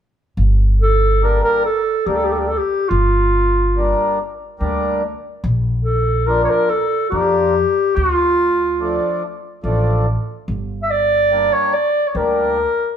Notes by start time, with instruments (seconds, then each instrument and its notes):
0.37 upright bass G1
0.82 clarinet A4
1.22 accordion G3 A#3 D4, clarinet A#4
1.44 clarinet A#4
1.65 clarinet A4
2.06 upright bass D2, accordion G3 A#3 D4, clarinet G4
2.15 clarinet A4
2.24 clarinet G4
2.31 clarinet A4
2.39 clarinet G4
2.47 clarinet A4
2.57 clarinet G4
2.89 upright bass G1, clarinet F4
3.76 accordion G3 A#3 D4
4.59 upright bass D2, accordion G3 A#3 D4
5.44 upright bass A#1
5.84 clarinet A4
6.27 accordion F3 A#3 D4, clarinet A#4
6.45 clarinet C#5
6.50 clarinet A#4
6.70 clarinet A4
7.10 upright bass F2, accordion F3 A#3 D4, clarinet G4
7.95 upright bass D2, clarinet F#4
8.12 clarinet F4
8.80 accordion F3 A3 D4
9.64 upright bass A1, accordion F3 A3 D4
10.48 upright bass G1
10.83 clarinet E5
10.90 clarinet D5
11.31 accordion G3 A#3 D4
11.53 clarinet C#5
11.74 clarinet D5
12.07 clarinet C#5
12.15 upright bass D2, accordion G3 A#3 D4, clarinet A#4